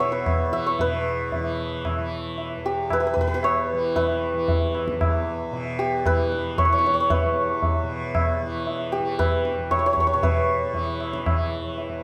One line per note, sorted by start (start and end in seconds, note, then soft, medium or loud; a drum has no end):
0.00 2.57 E2 medium
0.00 0.80 B2 medium
0.00 0.50 E3 medium
0.00 0.12 B4 medium
0.00 0.66 C#5 medium
0.00 0.52 E5 medium
0.00 1.31 F#5 medium
0.00 tabla ke medium
0.12 0.80 B4 medium
0.26 tabla na medium
0.26 tabla ge medium
0.50 1.40 E3 medium
0.50 2.83 E5 medium
0.50 tabla ge soft
0.67 3.23 C#5 medium
0.79 3.15 B2 medium
0.79 2.93 B4 medium
0.79 tabla tin loud
0.79 tabla ge medium
1.32 tabla tin medium
1.32 tabla ge medium
1.40 1.99 E3 medium
1.85 tabla na medium
1.85 tabla ge medium
1.99 3.73 E3 medium
2.38 tabla tin medium
2.57 4.91 E2 medium
2.66 5.78 G4 medium
2.90 3.00 B4 medium
2.90 tabla na medium
2.90 tabla ge medium
3.00 3.06 B4 medium
3.07 3.13 B4 medium
3.14 5.51 B2 medium
3.14 3.20 B4 medium
3.14 tabla ge medium
3.21 3.27 B4 medium
3.28 3.34 B4 medium
3.34 3.96 B4 medium
3.43 6.00 C#5 loud
3.43 tabla na medium
3.73 4.34 E3 medium
3.96 6.06 B4 medium
3.96 tabla tin loud
3.96 tabla ge medium
4.34 6.08 E3 medium
4.48 tabla tin medium
4.48 tabla ge medium
4.75 tabla na medium
4.88 7.26 E2 medium
4.88 tabla ke medium
5.01 tabla na medium
5.01 tabla ge medium
5.51 7.83 B2 medium
5.51 tabla tin medium
5.79 8.91 G4 medium
6.06 6.68 E3 medium
6.06 7.10 B4 loud
6.06 tabla na medium
6.06 tabla ge medium
6.32 tabla te medium
6.58 6.65 C#5 medium
6.58 tabla na medium
6.58 tabla ge medium
6.65 8.42 E3 medium
6.65 6.72 C#5 medium
6.72 6.78 C#5 medium
6.78 6.86 C#5 medium
6.84 6.93 C#5 medium
6.84 tabla te medium
6.94 7.00 C#5 medium
7.00 9.57 C#5 medium
7.10 9.19 B4 medium
7.10 tabla tin loud
7.10 tabla ge medium
7.26 9.57 E2 medium
7.62 tabla tin medium
7.62 tabla ge medium
7.83 10.14 B2 medium
8.15 tabla na medium
8.15 tabla ge medium
8.42 9.00 E3 medium
8.67 tabla tin medium
8.92 12.03 G4 medium
9.00 10.73 E3 medium
9.19 10.23 B4 medium
9.19 tabla na medium
9.19 tabla ge medium
9.45 tabla te medium
9.58 11.88 E2 medium
9.71 9.79 C#5 medium
9.71 tabla na medium
9.71 tabla ge medium
9.79 9.86 C#5 medium
9.86 9.93 C#5 medium
9.93 10.00 C#5 medium
9.93 tabla ge medium
10.00 10.07 C#5 medium
10.07 10.13 C#5 medium
10.13 12.03 B2 medium
10.13 12.03 C#5 medium
10.23 12.03 B4 medium
10.23 tabla tin loud
10.23 tabla ge medium
10.73 11.31 E3 medium
10.73 tabla tin medium
10.73 tabla ge medium
11.00 tabla na medium
11.13 tabla ke medium
11.26 tabla na medium
11.26 tabla ge medium
11.31 12.03 E3 medium
11.78 tabla tin medium
11.88 12.03 E2 medium